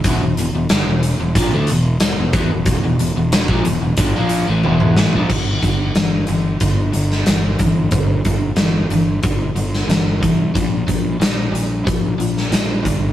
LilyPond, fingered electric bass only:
\new Staff \with { instrumentName = "Fingered electric bass" } { \clef bass \time 4/4 \key g \dorian \tempo 4 = 91 e,,16 e,,16 e,,16 e,,16 g,,16 e,,8 e,,16 bes,,16 d,16 e,,8 e,,16 e,,16 e,16 e,,16~ | e,,16 e,,16 e,,16 e,,8 bes,,16 e,,16 e,,16 g,,16 bes,,8 a,,16 e,,8 a,,16 bes,,16 | g,,8 g,,8 g,,8 g,,8 g,,8 g,,8 g,,8 g,,8 | g,,8 g,,8 g,,8 g,,8 g,,8 g,,8 g,,8 c,8 |
bes,,8 bes,,8 bes,,8 bes,,8 bes,,8 bes,,8 bes,,8 g,,8 | }